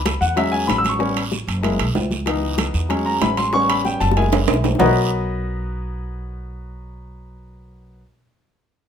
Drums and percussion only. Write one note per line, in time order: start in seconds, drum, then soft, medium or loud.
0.05 high bongo medium
0.05 high conga medium
0.05 high timbale medium
0.05 short guiro medium
0.21 high conga soft
0.21 short guiro medium
0.37 high bongo medium
0.37 high conga soft
0.37 high timbale medium
0.37 long guiro medium
0.53 high bongo soft
0.53 high conga soft
0.68 high bongo soft
0.68 low bongo medium
0.68 high conga medium
0.68 high timbale medium
0.68 short guiro medium
0.84 high bongo soft
0.84 high conga medium
0.84 high timbale medium
0.84 short guiro medium
1.00 high bongo medium
1.00 high conga soft
1.00 long guiro medium
1.16 high bongo soft
1.16 high conga soft
1.16 high timbale medium
1.32 high bongo soft
1.32 high conga medium
1.32 short guiro medium
1.48 high conga soft
1.48 high timbale medium
1.48 short guiro medium
1.63 high bongo medium
1.63 high conga soft
1.63 high timbale medium
1.63 long guiro medium
1.79 high bongo soft
1.79 high conga soft
1.79 high timbale medium
1.95 high bongo soft
1.95 low bongo medium
1.95 high conga soft
1.95 low timbale medium
1.95 short guiro medium
2.11 high bongo soft
2.11 high conga medium
2.11 short guiro medium
2.26 high bongo medium
2.26 high conga soft
2.26 high timbale medium
2.26 long guiro medium
2.42 high bongo soft
2.42 high conga soft
2.58 high bongo medium
2.58 high conga medium
2.58 high timbale medium
2.58 short guiro medium
2.74 high conga soft
2.74 short guiro medium
2.90 high bongo medium
2.90 high conga soft
2.90 high timbale medium
2.90 long guiro medium
3.06 high bongo soft
3.06 high conga soft
3.22 high bongo soft
3.22 low bongo medium
3.22 high conga medium
3.22 high timbale medium
3.22 low timbale medium
3.22 short guiro medium
3.37 high bongo soft
3.37 high conga medium
3.37 high timbale medium
3.37 short guiro medium
3.53 high bongo medium
3.53 high conga soft
3.53 long guiro medium
3.69 high bongo soft
3.69 high conga soft
3.69 high timbale medium
3.85 high bongo soft
3.85 high conga soft
3.85 short guiro medium
4.00 high bongo medium
4.00 high conga soft
4.00 high timbale medium
4.00 short guiro medium
4.11 high bongo medium
4.17 high conga soft
4.17 high timbale medium
4.17 long guiro medium
4.22 high bongo medium
4.32 low bongo medium
4.32 high conga soft
4.32 high timbale medium
4.48 high conga soft
4.48 high timbale medium
4.48 short guiro medium
4.54 low bongo medium
4.64 low bongo medium
4.64 high conga medium
4.64 low timbale medium
4.64 short guiro medium
4.75 low bongo medium
4.79 low bongo medium
4.79 low conga medium
4.79 low timbale medium
4.79 long guiro medium